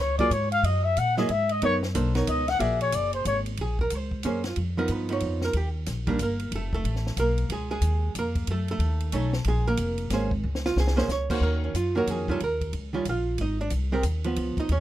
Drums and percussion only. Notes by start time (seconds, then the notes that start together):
0.19 kick, ride
0.31 hi-hat pedal, ride
0.52 ride
0.64 ride
0.97 hi-hat pedal, ride
1.17 snare
1.29 ride
1.49 ride
1.62 ride
1.83 snare
1.95 hi-hat pedal, ride
2.15 snare, ride
2.27 hi-hat pedal, ride
2.48 snare, ride
2.60 ride
2.81 ride
2.92 hi-hat pedal, ride
3.13 ride
3.25 hi-hat pedal, ride
3.46 ride
3.57 ride
3.79 kick
3.90 hi-hat pedal, ride
4.11 kick
4.23 hi-hat pedal, ride
4.44 snare, ride
4.56 ride
4.88 hi-hat pedal, ride
5.09 ride
5.20 ride
5.41 snare
5.53 ride
5.86 snare, hi-hat pedal, ride
6.07 kick, ride
6.19 hi-hat pedal, ride
6.39 ride
6.52 ride
6.73 kick
6.85 ride
6.96 snare
7.07 snare
7.17 hi-hat pedal, ride
7.38 ride
7.50 ride
7.82 hi-hat pedal, ride
8.15 hi-hat pedal, ride
8.35 kick, ride
8.47 ride
8.68 ride
8.80 ride
9.00 ride
9.12 hi-hat pedal, ride
9.33 snare
9.44 ride
9.77 hi-hat pedal, ride
9.98 ride
10.10 snare, hi-hat pedal, ride
10.31 kick
10.55 snare
10.66 snare
10.77 snare
10.87 snare
10.98 snare
11.09 snare, hi-hat pedal
11.30 kick, crash
11.75 hi-hat pedal, ride
12.07 hi-hat pedal, ride
12.28 kick
12.40 ride
12.61 kick, ride
12.73 ride
13.05 hi-hat pedal, ride
13.38 ride
13.70 hi-hat pedal, ride
14.03 hi-hat pedal, ride
14.24 ride
14.36 ride
14.57 kick, ride
14.69 ride